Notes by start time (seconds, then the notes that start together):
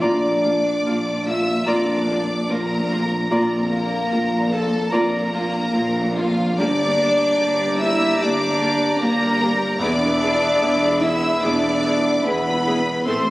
0.00 A#1 A#2 A#3 D4 F4 D5 A#5 D6
0.30 A#3
0.43 A#3 F4
0.59 D4
0.84 A#1 A#2 A#3 F4
1.14 D4
1.24 A#3 F4 E5 E6
1.42 A#3
1.65 A#1 A#2 A#3 F4 D5 A#5 D6
1.70 F2 D4
1.96 A#3
2.07 A#3 F4
2.23 D4
2.48 A#1 A#2 A#3 F4 A#4 A#5
2.78 D4
2.91 A#3 F4
3.05 A#3
3.29 A#1 A#2 A#3 F4 A#4 D5 A#5
3.34 A#5
3.59 F2
3.71 A#3 F4
3.85 D4
4.11 A#1 A#2 A#3 F4
4.39 D4
4.51 A#3 F4 A4 A5
4.64 A#3
4.89 A#1 F2 A#2 A#3 F4 A#4 D5 A#5
5.21 A#3
5.32 A#3 F4
5.46 D4
5.73 A#1 A#2 A#3 F4
6.02 D4
6.14 F3 A#3 F4 F5
6.31 A#3
6.56 G1 G2 A#3 D4 G4 D5 A#5 D6
6.85 A#3
6.99 A#3 G4
7.11 D4
7.38 G1 G2 A#3 G4
7.64 D4
7.76 E4 E5 E6
7.81 A#3 G4
7.93 A#3
8.18 G1 G2 D3 A#3 D4 G4 D5 D6
8.45 A#3
8.61 A#3 G4
8.71 D4
8.98 G1 G2 A#3 G4 A#4 A#5
9.25 D4
9.41 A#3 G4
9.52 A#3
9.79 E1 E2 B3 D4 G#4 D5 E5 B5 D6
10.04 B3
10.21 B3 G#4
10.33 E4
10.60 E1 E2 B3 G#4
10.86 E4
11.00 B3 E4 G#4 E5 E6
11.14 B3
11.40 E1 E2 B2 B3 D4 G#4 D5 D6
11.69 B3
11.84 B3 G#4
11.96 E4
12.22 E1 E2 B3 G#4 B4 B5
12.26 G#4
12.50 E4
12.66 B3 G#4
12.79 B3
13.05 A1 A2 C4 A4 C5 E5 C6